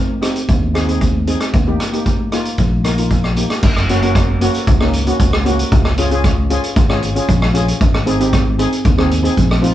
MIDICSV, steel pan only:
0, 0, Header, 1, 2, 480
1, 0, Start_track
1, 0, Key_signature, -4, "major"
1, 0, Tempo, 523104
1, 1407, Time_signature, 4, 2, 24, 8
1, 8940, End_track
2, 0, Start_track
2, 0, Title_t, "Steel pan"
2, 0, Program_c, 0, 114
2, 199, Note_on_c, 0, 60, 75
2, 203, Note_on_c, 0, 63, 72
2, 205, Note_on_c, 0, 67, 79
2, 491, Note_off_c, 0, 60, 0
2, 493, Note_off_c, 0, 63, 0
2, 494, Note_off_c, 0, 67, 0
2, 680, Note_on_c, 0, 60, 70
2, 681, Note_on_c, 0, 63, 65
2, 688, Note_on_c, 0, 68, 80
2, 756, Note_off_c, 0, 60, 0
2, 757, Note_off_c, 0, 63, 0
2, 760, Note_off_c, 0, 68, 0
2, 807, Note_on_c, 0, 60, 67
2, 811, Note_on_c, 0, 63, 65
2, 812, Note_on_c, 0, 68, 79
2, 1023, Note_off_c, 0, 60, 0
2, 1025, Note_off_c, 0, 63, 0
2, 1026, Note_off_c, 0, 68, 0
2, 1167, Note_on_c, 0, 60, 70
2, 1172, Note_on_c, 0, 63, 68
2, 1173, Note_on_c, 0, 68, 79
2, 1384, Note_off_c, 0, 60, 0
2, 1386, Note_off_c, 0, 63, 0
2, 1387, Note_off_c, 0, 68, 0
2, 1531, Note_on_c, 0, 58, 77
2, 1538, Note_on_c, 0, 63, 72
2, 1541, Note_on_c, 0, 67, 85
2, 1673, Note_off_c, 0, 58, 0
2, 1676, Note_off_c, 0, 63, 0
2, 1678, Note_off_c, 0, 67, 0
2, 1773, Note_on_c, 0, 58, 74
2, 1775, Note_on_c, 0, 63, 67
2, 1782, Note_on_c, 0, 67, 82
2, 1988, Note_off_c, 0, 58, 0
2, 1989, Note_off_c, 0, 63, 0
2, 1992, Note_off_c, 0, 67, 0
2, 2130, Note_on_c, 0, 58, 74
2, 2138, Note_on_c, 0, 63, 68
2, 2140, Note_on_c, 0, 65, 84
2, 2419, Note_off_c, 0, 58, 0
2, 2423, Note_off_c, 0, 63, 0
2, 2424, Note_off_c, 0, 65, 0
2, 2609, Note_on_c, 0, 58, 68
2, 2611, Note_on_c, 0, 63, 60
2, 2616, Note_on_c, 0, 70, 77
2, 2683, Note_off_c, 0, 58, 0
2, 2684, Note_off_c, 0, 63, 0
2, 2686, Note_off_c, 0, 70, 0
2, 2732, Note_on_c, 0, 58, 65
2, 2735, Note_on_c, 0, 63, 60
2, 2739, Note_on_c, 0, 65, 79
2, 2948, Note_off_c, 0, 58, 0
2, 2949, Note_off_c, 0, 63, 0
2, 2952, Note_off_c, 0, 65, 0
2, 3089, Note_on_c, 0, 58, 71
2, 3094, Note_on_c, 0, 63, 60
2, 3095, Note_on_c, 0, 67, 75
2, 3306, Note_off_c, 0, 58, 0
2, 3309, Note_off_c, 0, 63, 0
2, 3309, Note_off_c, 0, 67, 0
2, 3572, Note_on_c, 0, 58, 82
2, 3573, Note_on_c, 0, 61, 80
2, 3577, Note_on_c, 0, 66, 90
2, 3644, Note_off_c, 0, 58, 0
2, 3645, Note_off_c, 0, 61, 0
2, 3647, Note_off_c, 0, 66, 0
2, 3693, Note_on_c, 0, 58, 80
2, 3698, Note_on_c, 0, 61, 76
2, 3702, Note_on_c, 0, 66, 84
2, 3908, Note_off_c, 0, 58, 0
2, 3911, Note_off_c, 0, 61, 0
2, 3913, Note_off_c, 0, 66, 0
2, 4049, Note_on_c, 0, 58, 82
2, 4054, Note_on_c, 0, 61, 73
2, 4057, Note_on_c, 0, 66, 91
2, 4266, Note_off_c, 0, 58, 0
2, 4268, Note_off_c, 0, 61, 0
2, 4270, Note_off_c, 0, 66, 0
2, 4413, Note_on_c, 0, 58, 87
2, 4419, Note_on_c, 0, 61, 73
2, 4422, Note_on_c, 0, 63, 80
2, 4555, Note_off_c, 0, 58, 0
2, 4558, Note_off_c, 0, 61, 0
2, 4559, Note_off_c, 0, 63, 0
2, 4645, Note_on_c, 0, 58, 72
2, 4650, Note_on_c, 0, 61, 75
2, 4653, Note_on_c, 0, 66, 83
2, 4864, Note_off_c, 0, 58, 0
2, 4866, Note_off_c, 0, 61, 0
2, 4868, Note_off_c, 0, 66, 0
2, 5002, Note_on_c, 0, 58, 79
2, 5005, Note_on_c, 0, 61, 80
2, 5011, Note_on_c, 0, 66, 91
2, 5245, Note_off_c, 0, 58, 0
2, 5247, Note_off_c, 0, 61, 0
2, 5250, Note_off_c, 0, 66, 0
2, 5488, Note_on_c, 0, 61, 91
2, 5493, Note_on_c, 0, 65, 82
2, 5494, Note_on_c, 0, 68, 92
2, 5561, Note_off_c, 0, 61, 0
2, 5564, Note_off_c, 0, 65, 0
2, 5565, Note_off_c, 0, 68, 0
2, 5609, Note_on_c, 0, 61, 87
2, 5609, Note_on_c, 0, 65, 77
2, 5616, Note_on_c, 0, 68, 95
2, 5825, Note_off_c, 0, 61, 0
2, 5825, Note_off_c, 0, 65, 0
2, 5828, Note_off_c, 0, 68, 0
2, 5965, Note_on_c, 0, 61, 82
2, 5967, Note_on_c, 0, 65, 80
2, 5971, Note_on_c, 0, 68, 92
2, 6182, Note_off_c, 0, 61, 0
2, 6183, Note_off_c, 0, 65, 0
2, 6185, Note_off_c, 0, 68, 0
2, 6324, Note_on_c, 0, 61, 73
2, 6329, Note_on_c, 0, 65, 75
2, 6332, Note_on_c, 0, 68, 83
2, 6469, Note_off_c, 0, 61, 0
2, 6471, Note_off_c, 0, 65, 0
2, 6472, Note_off_c, 0, 68, 0
2, 6564, Note_on_c, 0, 61, 85
2, 6568, Note_on_c, 0, 65, 71
2, 6573, Note_on_c, 0, 68, 81
2, 6781, Note_off_c, 0, 61, 0
2, 6783, Note_off_c, 0, 65, 0
2, 6786, Note_off_c, 0, 68, 0
2, 6916, Note_on_c, 0, 61, 85
2, 6921, Note_on_c, 0, 65, 70
2, 6926, Note_on_c, 0, 68, 91
2, 7160, Note_off_c, 0, 61, 0
2, 7163, Note_off_c, 0, 65, 0
2, 7165, Note_off_c, 0, 68, 0
2, 7399, Note_on_c, 0, 60, 84
2, 7402, Note_on_c, 0, 63, 80
2, 7405, Note_on_c, 0, 68, 94
2, 7474, Note_off_c, 0, 60, 0
2, 7476, Note_off_c, 0, 63, 0
2, 7478, Note_off_c, 0, 68, 0
2, 7524, Note_on_c, 0, 60, 83
2, 7527, Note_on_c, 0, 63, 79
2, 7532, Note_on_c, 0, 67, 92
2, 7740, Note_off_c, 0, 60, 0
2, 7742, Note_off_c, 0, 63, 0
2, 7744, Note_off_c, 0, 67, 0
2, 7879, Note_on_c, 0, 60, 82
2, 7882, Note_on_c, 0, 63, 73
2, 7886, Note_on_c, 0, 68, 101
2, 8097, Note_off_c, 0, 60, 0
2, 8098, Note_off_c, 0, 63, 0
2, 8100, Note_off_c, 0, 68, 0
2, 8237, Note_on_c, 0, 60, 87
2, 8238, Note_on_c, 0, 63, 76
2, 8243, Note_on_c, 0, 68, 89
2, 8382, Note_off_c, 0, 60, 0
2, 8383, Note_off_c, 0, 63, 0
2, 8385, Note_off_c, 0, 68, 0
2, 8469, Note_on_c, 0, 60, 81
2, 8475, Note_on_c, 0, 63, 73
2, 8477, Note_on_c, 0, 68, 92
2, 8691, Note_off_c, 0, 60, 0
2, 8694, Note_off_c, 0, 63, 0
2, 8695, Note_off_c, 0, 68, 0
2, 8827, Note_on_c, 0, 60, 79
2, 8828, Note_on_c, 0, 63, 77
2, 8836, Note_on_c, 0, 65, 91
2, 8940, Note_off_c, 0, 60, 0
2, 8940, Note_off_c, 0, 63, 0
2, 8940, Note_off_c, 0, 65, 0
2, 8940, End_track
0, 0, End_of_file